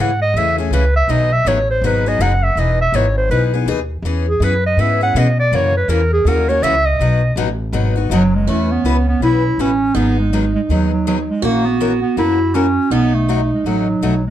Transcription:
Already playing: upright bass G#2
0.00 clarinet F#5
0.22 clarinet D#5
0.34 upright bass E2, steel-string acoustic guitar C#3 E3 A3 C#4 G#4, clarinet E5
0.58 steel-string acoustic guitar A3 C#4 G#4, clarinet G#4
0.71 upright bass C#2, steel-string acoustic guitar C#3 E3 A3 C#4 G#4, clarinet B4
0.96 clarinet E5
1.08 upright bass B1, steel-string acoustic guitar B2 D#3 F#3 B3 D#4 G#4, clarinet D#5
1.33 clarinet E5
1.45 upright bass A1, steel-string acoustic guitar B2 D#3 F#3 B3 D#4 G#4, clarinet C#5
1.71 clarinet C5
1.82 upright bass G#1, steel-string acoustic guitar B2 D#3 F#3 B3 D#4 G#4
1.87 clarinet B4
2.06 steel-string acoustic guitar F#3 B3 D#4 G#4, clarinet D#5
2.19 upright bass F#1, steel-string acoustic guitar B2 D#3 F#3 B3 D#4 G#4, clarinet F#5
2.43 clarinet E5
2.55 upright bass E1, steel-string acoustic guitar E3 B3 D#4 G#4, clarinet D#5
2.81 clarinet E5
2.92 upright bass G#1, steel-string acoustic guitar E3 B3 D#4 G#4, clarinet C#5
3.18 clarinet C5
3.29 upright bass B1, steel-string acoustic guitar E3 B3 D#4 G#4, clarinet B4
3.54 steel-string acoustic guitar B3 D#4 G#4
3.66 upright bass D#2, steel-string acoustic guitar E3 B3 D#4 G#4
4.02 upright bass E2, steel-string acoustic guitar E3 B3 C#4 G#4
4.28 clarinet G#4
4.40 upright bass F#2, steel-string acoustic guitar E3 B3 C#4 G#4
4.44 clarinet B4
4.66 clarinet D#5
4.77 upright bass G#2, steel-string acoustic guitar E3 B3 C#4 G#4
4.81 clarinet E5
5.01 steel-string acoustic guitar B3 C#4 G#4, clarinet F#5
5.14 upright bass B2, steel-string acoustic guitar E3 B3 C#4 G#4, clarinet D#5
5.40 clarinet D5
5.51 upright bass F#2, steel-string acoustic guitar C#3 E3 A#3 C#4 F#4
5.56 clarinet C#5
5.77 clarinet B4
5.88 upright bass E2, steel-string acoustic guitar C#3 E3 A#3 C#4 F#4, clarinet A#4
6.13 clarinet G#4
6.25 upright bass D#2, steel-string acoustic guitar C#3 E3 A#3 C#4 F#4, clarinet A#4
6.49 steel-string acoustic guitar A#3 C#4 F#4, clarinet C#5
6.62 upright bass C#2, steel-string acoustic guitar C#3 E3 A#3 C#4 F#4, clarinet E5
6.86 clarinet D#5
6.99 upright bass B1, steel-string acoustic guitar B2 F#3 B3 D#4 F#4
7.36 upright bass A1, steel-string acoustic guitar B2 F#3 B3 D#4 F#4
7.72 upright bass G#1, steel-string acoustic guitar B2 F#3 B3 D#4 F#4
7.96 steel-string acoustic guitar B3 D#4 F#4
8.10 upright bass F#1, steel-string acoustic guitar B2 F#3 B3 D#4 F#4, clarinet F#3
8.36 clarinet G#3
8.46 upright bass E2, steel-string acoustic guitar E3 B3 C#4 E4 F#4 B4, clarinet A3
8.72 clarinet B3
8.84 upright bass C#2, steel-string acoustic guitar E3 B3 E4 F#4 B4
9.09 clarinet B3
9.20 upright bass B1, steel-string acoustic guitar E3 B3 E4 F#4 B4, clarinet E4
9.57 upright bass A1, steel-string acoustic guitar E3 B3 E4 F#4 B4, clarinet C#4
9.95 upright bass G#1, steel-string acoustic guitar D#3 F#3 B3 D#4 G#4, clarinet B3
10.19 clarinet G#3
10.33 steel-string acoustic guitar D#3 F#3 B3 D#4 G#4, clarinet G#3
10.55 clarinet G#3
10.69 upright bass D#2, steel-string acoustic guitar D#3 F#3 B3 D#4 G#4, clarinet F#3
10.92 clarinet F#3
11.07 steel-string acoustic guitar D#3 F#3 B3 D#4 G#4, clarinet F#3
11.30 clarinet G#3
11.42 upright bass A#1, steel-string acoustic guitar E3 A#3 C#4 F#4 A#4, clarinet A#3
11.66 clarinet B3
11.80 steel-string acoustic guitar E3 A#3 C#4 F#4 A#4
12.02 clarinet B3
12.17 upright bass F#2, steel-string acoustic guitar E3 A#3 C#4 F#4 A#4, clarinet E4
12.54 steel-string acoustic guitar E3 A#3 C#4 F#4 A#4, clarinet C#4
12.90 upright bass B1, steel-string acoustic guitar B2 F#3 A3 D#4 F#4, clarinet B3
13.15 clarinet A3
13.29 steel-string acoustic guitar B2 F#3 A3 D#4 F#4
13.54 clarinet G#3
13.64 upright bass A1, steel-string acoustic guitar B2 F#3 A3 D#4 F#4, clarinet F#3
14.01 upright bass B1, steel-string acoustic guitar B2 F#3 A3 D#4 F#4, clarinet F#3
14.27 clarinet G#3

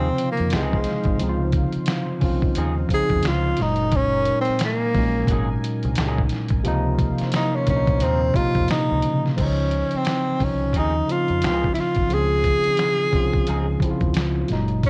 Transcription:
Already playing: fingered electric bass D#2, tine electric piano C3 C#3 F3 C4 D#4 F4, tenor saxophone C4, analog synth pad D#4 C5 F5
0.18 closed hi-hat
0.32 tenor saxophone A#3
0.37 fingered electric bass F2, closed hi-hat
0.50 fingered electric bass C#2, clean electric guitar F3 C4 D#4 G#4, finger snap, snare, closed hi-hat
0.56 tenor saxophone G#3
0.73 kick
0.84 snare, closed hi-hat
1.04 fingered electric bass G#1, kick, closed hi-hat
1.19 fingered electric bass C#2, tine electric piano C#3 F3 C4, closed hi-hat
1.23 tine electric piano D#4
1.29 tine electric piano F4
1.52 kick, closed hi-hat
1.73 muted fingered electric bass stroke, closed hi-hat
1.86 finger snap, snare, closed hi-hat
2.21 fingered electric bass C2, tine electric piano F3 C4 C#4, kick, open hi-hat
2.25 tine electric piano F4
2.42 kick
2.55 fingered electric bass D#2, clean electric guitar F3 C4 D#4 G#4, closed hi-hat
2.89 tine electric piano C#3 F3 C4, kick, closed hi-hat
2.94 tine electric piano D#4, tenor saxophone G#4
3.09 fingered electric bass F2, kick, closed hi-hat
3.23 fingered electric bass C#2, finger snap, snare, closed hi-hat
3.28 tenor saxophone F4
3.57 fingered electric bass F#1, tine electric piano A#2 F#3 G#3, analog synth pad A#4 G#5, snare, closed hi-hat
3.62 tine electric piano D#4, tenor saxophone D#4
3.76 closed hi-hat
3.92 kick, closed hi-hat
3.96 tenor saxophone C#4
4.25 closed hi-hat
4.41 tenor saxophone C4
4.45 muted fingered electric bass stroke, closed hi-hat
4.59 finger snap, snare, closed hi-hat
4.64 tenor saxophone A#3
4.94 fingered electric bass A#1, tine electric piano A#2 F#3 G#3, kick, open hi-hat
4.98 tine electric piano C#4
5.27 fingered electric bass G#1, clean electric guitar F#3 A#3, kick, closed hi-hat
5.32 clean electric guitar D#4 G#4
5.64 closed hi-hat
5.83 fingered electric bass C2, closed hi-hat
5.95 fingered electric bass C#2, clean electric guitar F#3 A#3 D#4, finger snap, snare, closed hi-hat
6.00 clean electric guitar G#4
6.18 kick
6.29 snare, closed hi-hat
6.48 fingered electric bass G#1, kick, closed hi-hat
6.63 fingered electric bass C#2, tine electric piano C3 F3 A#3, analog synth pad C5 F5, closed hi-hat
6.68 tine electric piano D#4
6.99 kick, closed hi-hat
7.18 muted fingered electric bass stroke, snare, closed hi-hat
7.32 tenor saxophone D#4, finger snap, snare, closed hi-hat
7.56 tenor saxophone C#4
7.66 fingered electric bass C2, tine electric piano A#2 F3 A#3, tenor saxophone C#4, kick, closed hi-hat
7.70 tine electric piano D4
7.76 tine electric piano D#4
7.87 kick, closed hi-hat
8.00 fingered electric bass D#2, clean electric guitar F3 C4 D#4 A#4, tenor saxophone C4, closed hi-hat
8.34 tine electric piano C3 F3 A#3, tenor saxophone F4, kick, closed hi-hat
8.39 tine electric piano D#4
8.55 fingered electric bass F2, kick, closed hi-hat
8.68 tenor saxophone D#4, finger snap, muted fingered electric bass stroke, snare, closed hi-hat
8.91 fingered electric bass C#2
9.02 fingered electric bass C#3, closed hi-hat
9.26 snare
9.36 fingered electric bass C#2, tine electric piano C#3 D#3 C5, tenor saxophone C4, kick, closed hi-hat, crash
9.41 tine electric piano F3 D#4, tenor saxophone C#4
9.71 closed hi-hat
9.91 muted fingered electric bass stroke, closed hi-hat
9.97 tenor saxophone C4
10.05 finger snap, snare, closed hi-hat
10.39 fingered electric bass C2, tine electric piano F3 C#4 C5, kick, open hi-hat
10.43 tenor saxophone C#4, tine electric piano D#4
10.73 fingered electric bass D#2, clean electric guitar F3 C4 D#4, kick, closed hi-hat
10.77 tenor saxophone D#4, clean electric guitar G#4
11.07 tine electric piano C#3 F3 C4, tenor saxophone F4, closed hi-hat
11.12 tine electric piano D#4
11.28 fingered electric bass F2, closed hi-hat
11.42 fingered electric bass C#2, clean electric guitar F3 C4 D#4 G#4, finger snap, snare, closed hi-hat
11.46 tenor saxophone F4
11.64 kick
11.74 tenor saxophone E4, closed hi-hat
11.79 tenor saxophone F4, snare
11.95 fingered electric bass G#1, kick, closed hi-hat
12.10 fingered electric bass C#2, tine electric piano C#3 F3 C4 F4, tenor saxophone G#4, closed hi-hat
12.44 kick, closed hi-hat
12.64 tine electric piano C#3 F3 C4, muted fingered electric bass stroke, closed hi-hat
12.68 tine electric piano D#4
12.77 finger snap, snare, closed hi-hat
13.11 fingered electric bass C2, tine electric piano F3 C4 C#4, kick, open hi-hat
13.16 tine electric piano F4
13.33 kick
13.47 fingered electric bass C#2, clean electric guitar F3 C4 D#4 G#4, closed hi-hat
13.80 tine electric piano C#3 F3 C4, kick, closed hi-hat
13.84 tine electric piano E4
13.91 tine electric piano F4
14.01 fingered electric bass D#2, kick, closed hi-hat
14.14 fingered electric bass C#2, finger snap, snare, closed hi-hat
14.48 fingered electric bass F#1, tine electric piano A#2 F#3 G#3, snare, closed hi-hat
14.53 tine electric piano D#4
14.68 closed hi-hat
14.83 tenor saxophone C#4, kick, closed hi-hat

